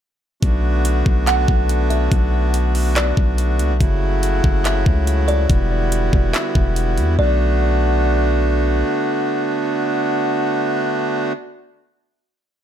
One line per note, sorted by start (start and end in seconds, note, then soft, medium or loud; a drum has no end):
0.43 1.03 B1 loud
0.43 3.77 D3 medium
0.43 5.46 A3 medium
0.43 3.77 B3 medium
0.43 3.77 D4 medium
0.43 3.77 F#4 medium
0.43 kick loud
0.43 closed hi-hat medium
0.85 closed hi-hat medium
1.06 1.47 B1 loud
1.06 kick medium
1.27 1.87 F#5 medium
1.27 clap loud
1.27 closed hi-hat medium
1.48 2.09 B1 loud
1.48 kick medium
1.69 closed hi-hat medium
1.90 2.10 E5 medium
1.90 closed hi-hat medium
2.12 3.13 B1 loud
2.12 kick loud
2.12 closed hi-hat medium
2.54 closed hi-hat medium
2.75 open hi-hat medium
2.96 3.77 D5 medium
2.96 clap loud
2.96 closed hi-hat medium
3.17 3.61 B1 loud
3.17 kick loud
3.38 closed hi-hat medium
3.59 3.72 C#2 loud
3.59 closed hi-hat medium
3.70 3.80 B1 loud
3.81 4.41 F#1 loud
3.81 5.48 C#3 medium
3.81 5.48 F#3 medium
3.81 5.48 E4 medium
3.81 7.15 F#4 medium
3.81 kick loud
3.81 closed hi-hat medium
4.23 closed hi-hat medium
4.44 4.85 F#1 loud
4.44 kick medium
4.65 5.25 E5 medium
4.65 clap loud
4.65 closed hi-hat medium
4.86 5.47 C#2 loud
4.86 kick loud
5.07 closed hi-hat medium
5.28 5.48 D5 medium
5.28 closed hi-hat medium
5.50 6.10 E1 loud
5.50 7.17 D3 medium
5.50 7.17 G3 medium
5.50 7.17 B3 medium
5.50 7.17 E4 medium
5.50 kick loud
5.50 closed hi-hat medium
5.92 closed hi-hat medium
6.13 6.33 E1 loud
6.13 kick medium
6.34 6.74 E5 medium
6.34 clap loud
6.34 closed hi-hat medium
6.55 6.99 E1 loud
6.55 kick medium
6.76 closed hi-hat medium
6.98 7.18 E2 loud
6.98 closed hi-hat medium
7.19 8.84 B1 loud
7.19 11.33 D3 medium
7.19 11.33 A3 medium
7.19 11.33 B3 medium
7.19 11.33 D4 medium
7.19 11.33 F#4 medium
7.19 8.41 D5 medium